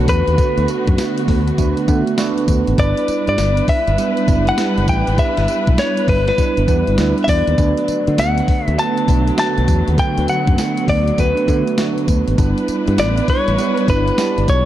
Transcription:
Already playing: D3 A3 B3 D4 F#4 B4
0.08 E2 B4, kick, closed hi-hat, tambourine
0.28 D#2, closed hi-hat
0.38 A3 B3 D4 F#4 B4, kick, closed hi-hat, tambourine
0.58 D2, closed hi-hat
0.68 closed hi-hat, tambourine
0.88 F#2, kick, closed hi-hat
0.98 snare, closed hi-hat, tambourine
1.18 closed hi-hat
1.28 D2, kick, open hi-hat
1.48 closed hi-hat
1.58 D2 A3 B3 D4 F#4 B4, kick, closed hi-hat, tambourine
1.77 closed hi-hat
1.88 D3 A3 B3 D4 F#4 B4, kick, closed hi-hat, tambourine
2.07 closed hi-hat
2.18 A3 B3 D4 F#4 B4, snare, closed hi-hat, tambourine
2.38 closed hi-hat
2.48 D2, kick, closed hi-hat, tambourine
2.67 G#1, closed hi-hat
2.78 G1 G3 B3 D4 E4 B4 D5, kick, closed hi-hat, tambourine
2.97 closed hi-hat
3.08 muted fingered electric bass stroke, closed hi-hat, tambourine
3.27 G2 D5, closed hi-hat
3.38 G1, snare, closed hi-hat, tambourine
3.57 closed hi-hat
3.68 E5, kick, open hi-hat
3.87 G1, closed hi-hat
3.98 G3 B3 D4 E4 B4, closed hi-hat, tambourine
4.17 closed hi-hat
4.27 F#1 G3 B3 D4 E4 B4, kick, closed hi-hat, tambourine
4.47 F#5, closed hi-hat
4.58 G3 B3 D4 E4 B4, snare, closed hi-hat, tambourine
4.78 F#1, closed hi-hat
4.88 A1 G5, kick, closed hi-hat, tambourine
5.07 G#1, closed hi-hat
5.18 G3 B3 D4 E4 B4 E5, kick, closed hi-hat, tambourine
5.37 G1, snare, closed hi-hat
5.48 closed hi-hat, tambourine
5.67 B1, kick, closed hi-hat
5.78 C#5, snare, closed hi-hat, tambourine
5.97 closed hi-hat
6.08 G1 B4, kick, open hi-hat
6.28 B4, snare, closed hi-hat
6.38 G3 B3 D4 E4 B4, kick, closed hi-hat, tambourine
6.57 G1, closed hi-hat
6.68 E2 G3 B3 D4 E4 B4, kick, closed hi-hat, tambourine
6.87 G1, closed hi-hat
6.98 D2 G3 B3 D4 E4 B4, snare, closed hi-hat, tambourine
7.18 closed hi-hat
7.24 E2 E5, kick, open hi-hat, tambourine
7.29 D5
7.47 D#2, closed hi-hat
7.58 D2 D3 F#3 A3 B3 D4 F#4 B4, kick, closed hi-hat, tambourine
7.77 closed hi-hat
7.88 muted fingered electric bass stroke, closed hi-hat, tambourine
8.07 D3, closed hi-hat
8.18 D2 F#5, snare, closed hi-hat, tambourine
8.38 closed hi-hat
8.48 kick, open hi-hat
8.66 D2 E5, closed hi-hat
8.78 A3 B3 D4 F#4 B4 A5, closed hi-hat, tambourine
8.97 closed hi-hat
9.08 B1 A3 B3 D4 F#4 B4, kick, closed hi-hat, tambourine
9.28 closed hi-hat
9.38 A3 B3 D4 F#4 B4 A5, snare, closed hi-hat, tambourine
9.58 B1, closed hi-hat
9.68 E2, kick, closed hi-hat, tambourine
9.88 D#2, closed hi-hat
9.98 F#3 A3 B3 D4 B4 G5, kick, closed hi-hat, tambourine
10.18 D2, closed hi-hat
10.28 F#5, closed hi-hat, tambourine
10.47 F#2, kick, closed hi-hat
10.58 snare, closed hi-hat, tambourine
10.77 closed hi-hat
10.88 D2 D5, kick, open hi-hat
11.08 closed hi-hat
11.18 D2 A3 B3 D4 F#4 B4, kick, closed hi-hat, tambourine
11.37 closed hi-hat
11.48 D3 A3 B3 D4 F#4 B4, kick, closed hi-hat, tambourine
11.68 closed hi-hat
11.78 A3 B3 D4 F#4 B4, snare, closed hi-hat, tambourine
11.98 closed hi-hat
12.08 D2, kick, closed hi-hat, tambourine
12.28 G#1, closed hi-hat
12.38 G1 G3 B3 D4 E4 B4, kick, closed hi-hat, tambourine
12.58 closed hi-hat
12.68 muted fingered electric bass stroke, closed hi-hat, tambourine
12.88 G2, closed hi-hat
12.98 A1 D5, snare, closed hi-hat, tambourine
13.18 closed hi-hat
13.28 C#5, kick, open hi-hat
13.48 A1, closed hi-hat
13.58 G3 B3 D4 E4 B4, closed hi-hat, tambourine
13.77 closed hi-hat
13.88 G1 G3 B3 D4 E4 B4, kick, closed hi-hat, tambourine
14.08 closed hi-hat
14.18 G3 B3 D4 E4 D5, snare, closed hi-hat, tambourine
14.38 G1, closed hi-hat
14.48 B1 C#5, kick, closed hi-hat, tambourine

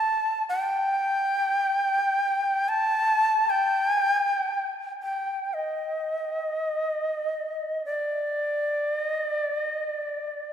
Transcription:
Already playing: A5
0.49 G5
2.69 A5
3.50 G5
3.92 G#5
4.03 G5
4.15 G#5
4.27 G5
5.02 G5
5.45 G5
5.54 D#5
7.85 D5
9.02 D#5
9.26 D5
9.66 D#5
9.90 D5

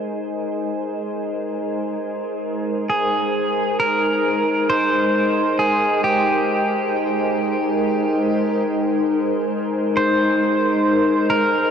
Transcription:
Already playing: G#3 D#4 A#4 C5
2.90 G#4
3.80 A#4
4.70 C5
5.59 G#4
6.04 G4
9.97 C5
11.30 A#4

